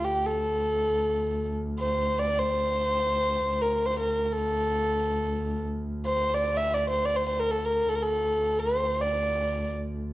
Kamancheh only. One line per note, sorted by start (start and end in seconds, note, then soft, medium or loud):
0.05 0.28 G4 medium
0.26 1.49 A4 medium
1.80 2.21 C5 medium
2.19 2.40 D5 medium
2.39 3.63 C5 medium
3.62 3.87 A#4 medium
3.86 3.99 C5 medium
4.00 4.25 A#4 medium
4.25 4.33 A#4 soft
4.32 5.63 A4 medium
6.06 6.36 C5 medium
6.34 6.59 D5 medium
6.57 6.76 E5 medium
6.74 6.89 D5 medium
6.90 7.07 C5 medium
7.05 7.17 D5 medium
7.16 7.28 C5 medium
7.29 7.41 C5 medium
7.39 7.53 A#4 medium
7.51 7.66 A4 medium
7.65 7.90 A#4 medium
7.89 7.97 A4 medium
7.95 8.04 A#4 medium
8.03 8.61 A4 medium
8.59 9.03 C5 medium
9.01 9.73 D5 medium